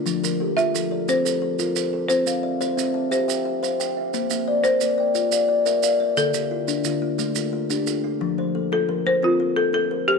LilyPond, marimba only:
\new Staff \with { instrumentName = "Marimba" } { \time 12/8 \key f \major \tempo 4. = 118 r4. e''4. c''2. | c''2. c''2~ c''8 r8 | r4. c''1~ c''8 | a'1~ a'4 r4 |
r4. a'4 c''8 f'4 a'8 a'4 g'8 | }